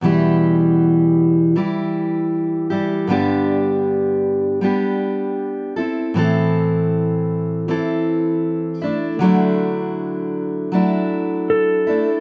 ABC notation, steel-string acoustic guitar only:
X:1
M:4/4
L:1/8
Q:"Swing 16ths" 1/4=79
K:Edor
V:1 name="Steel-string acoustic guitar"
[E,,B,,E,G,EG]4 [E,G,EG]3 [E,G,EG] | [G,,D,G,B,DG]4 [G,B,DG]3 [=CEA] | [A,,E,=CEA]4 [E,CEA]3 [A,DE] | [D,F,A,DE]4 [F,A,DE]3 [A,DE] |]